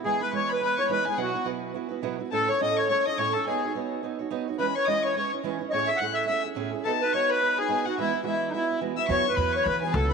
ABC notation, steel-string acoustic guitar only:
X:1
M:4/4
L:1/8
Q:"Swing" 1/4=212
K:E
V:1 name="Steel-string acoustic guitar"
[E,G,B,E] [G,B,E] [E,G,B,E]2 [E,G,B,E] [G,B,E] [E,G,B,E] [G,B,E] | [B,,F,B,EFB] [B,EB] [B,,F,B,EFB]2 [B,EFB] [B,EFB] [B,,F,B,EFB] [B,EFB] | [A,,A,CEA] [CEA] [A,,A,CEA]2 [A,CEA] [CEA] [A,,A,CEA] [CEA] | [B,DFc] [DFc] [B,DFc]2 [B,DFc] [DFc] [B,DFc] [DFc] |
[E,G,CEB] [CB] [E,G,CEB]2 [G,CEB] [CEB] [E,G,CEB] [CEB] | [A,,A,CEG] [CEG] [A,,A,CEG]2 [A,CEG] [CEG] [A,,A,CEG] [CEG] | [B,DFB] [DFB] [B,DFB]2 [B,DB] [DFB] [B,DFB] [DFB] | [E,G,B,EF] F [E,G,B,EF]2 [G,B,EF] [B,EF] [E,G,B,EF] [B,EF] |
[E,F,B,EF] E [F,B,EF]3 [B,EF] [F,B,EF] [EF] |]